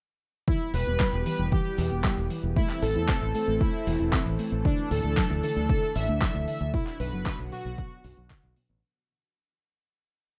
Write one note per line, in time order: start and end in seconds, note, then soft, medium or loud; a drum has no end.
0.48 0.56 E3 medium
0.48 6.70 E3 medium
0.48 2.55 G3 medium
0.48 2.54 B3 medium
0.48 0.72 E4 loud
0.48 2.54 G4 medium
0.48 kick loud
0.48 closed hi-hat medium
0.61 closed hi-hat soft
0.74 0.84 E1 medium
0.74 0.82 B2 loud
0.74 1.25 B4 loud
0.74 open hi-hat loud
0.87 0.97 E1 medium
0.87 0.92 B3 medium
0.87 closed hi-hat soft
1.00 1.05 G3 medium
1.00 kick loud
1.00 clap loud
1.00 closed hi-hat medium
1.13 1.23 E1 medium
1.13 closed hi-hat soft
1.26 1.35 E3 medium
1.26 1.50 B4 loud
1.26 open hi-hat loud
1.39 1.49 E1 medium
1.39 1.47 E3 medium
1.52 1.61 E3 medium
1.52 2.26 G4 medium
1.52 kick loud
1.52 closed hi-hat medium
1.65 closed hi-hat soft
1.78 1.88 E2 medium
1.78 1.87 B2 loud
1.78 open hi-hat loud
1.91 2.01 E1 medium
1.91 1.96 B3 medium
1.91 closed hi-hat soft
2.04 2.09 G3 medium
2.04 kick loud
2.04 clap loud
2.04 closed hi-hat medium
2.17 2.27 E1 medium
2.17 closed hi-hat soft
2.30 2.39 E3 medium
2.30 open hi-hat loud
2.43 2.53 E1 medium
2.43 2.52 E3 medium
2.43 closed hi-hat soft
2.56 2.65 A3 medium
2.56 6.70 A3 medium
2.56 4.63 C4 medium
2.56 2.83 E4 loud
2.56 6.70 A4 medium
2.56 kick loud
2.56 closed hi-hat medium
2.69 clap soft
2.69 closed hi-hat soft
2.82 2.93 A1 medium
2.82 2.91 E3 loud
2.82 3.33 A4 loud
2.82 open hi-hat loud
2.96 3.06 E2 medium
2.96 3.01 E4 medium
2.96 closed hi-hat soft
3.09 3.14 C4 medium
3.09 kick loud
3.09 clap loud
3.09 closed hi-hat medium
3.22 3.32 A1 medium
3.22 closed hi-hat soft
3.34 3.43 A3 medium
3.34 3.61 A4 loud
3.34 open hi-hat loud
3.48 3.58 A1 medium
3.48 3.56 A3 medium
3.48 closed hi-hat soft
3.60 3.69 A3 medium
3.60 4.35 E4 medium
3.60 kick loud
3.60 closed hi-hat medium
3.74 closed hi-hat soft
3.87 3.97 E1 medium
3.87 3.95 E3 loud
3.87 open hi-hat loud
4.00 4.10 E1 medium
4.00 4.05 E4 medium
4.00 closed hi-hat soft
4.13 4.18 C4 medium
4.13 kick loud
4.13 clap loud
4.13 closed hi-hat medium
4.26 4.36 A1 medium
4.26 closed hi-hat soft
4.39 4.48 A3 medium
4.39 open hi-hat loud
4.52 4.62 A1 medium
4.52 4.61 A3 medium
4.52 closed hi-hat soft
4.65 4.74 D3 medium
4.65 6.72 D4 medium
4.65 4.89 D4 loud
4.65 kick loud
4.65 closed hi-hat medium
4.78 closed hi-hat soft
4.91 5.01 D2 medium
4.91 5.00 A2 loud
4.91 5.42 A4 loud
4.91 open hi-hat loud
5.04 5.14 D2 medium
5.04 5.09 A3 medium
5.04 closed hi-hat soft
5.17 5.22 F#3 medium
5.17 kick loud
5.17 clap loud
5.17 closed hi-hat medium
5.30 5.40 D2 medium
5.30 closed hi-hat soft
5.43 5.52 D3 medium
5.43 5.68 A4 loud
5.43 open hi-hat loud
5.56 5.66 D2 medium
5.56 5.65 D3 medium
5.56 closed hi-hat soft
5.69 5.78 D3 medium
5.69 5.96 A4 loud
5.69 kick loud
5.69 closed hi-hat medium
5.83 closed hi-hat soft
5.95 6.06 A1 loud
5.95 6.04 A2 loud
5.95 6.47 E5 loud
5.95 open hi-hat loud
6.08 6.19 D2 medium
6.08 6.14 A3 medium
6.08 closed hi-hat soft
6.22 6.27 F#3 medium
6.22 kick loud
6.22 clap loud
6.22 closed hi-hat medium
6.35 6.45 D2 medium
6.35 closed hi-hat soft
6.48 6.56 D3 medium
6.48 6.72 E5 loud
6.48 open hi-hat loud
6.61 6.71 D2 medium
6.61 6.69 D3 medium
6.61 closed hi-hat soft
6.74 6.82 B2 medium
6.74 8.80 D3 medium
6.74 8.80 F#3 medium
6.74 8.80 B3 medium
6.74 6.98 E4 loud
6.74 8.80 F#4 medium
6.74 kick loud
6.74 closed hi-hat medium
6.87 clap soft
6.87 closed hi-hat soft
7.00 7.10 B1 medium
7.00 7.08 F#2 loud
7.00 7.25 B4 loud
7.00 open hi-hat medium
7.13 7.23 F#1 medium
7.13 7.18 F#3 medium
7.13 closed hi-hat soft
7.26 7.31 D3 medium
7.26 7.38 B4 loud
7.26 kick loud
7.26 clap loud
7.26 closed hi-hat medium
7.39 7.49 B1 medium
7.39 closed hi-hat soft
7.52 7.61 B2 medium
7.52 8.52 F#4 loud
7.52 open hi-hat loud
7.65 7.75 B1 medium
7.65 7.74 B2 medium
7.78 7.87 B2 medium
7.78 kick loud
7.78 closed hi-hat medium
7.91 closed hi-hat soft
8.04 8.14 B1 medium
8.04 8.13 F#2 loud
8.04 open hi-hat loud
8.17 8.27 B1 medium
8.17 8.22 F#3 medium
8.17 closed hi-hat soft
8.30 8.36 D3 medium
8.30 kick loud
8.30 clap loud
8.30 closed hi-hat medium
8.44 8.54 B1 medium
8.44 closed hi-hat soft
8.56 8.65 B2 medium
8.56 open hi-hat loud
8.70 8.80 A1 medium
8.70 8.78 B2 medium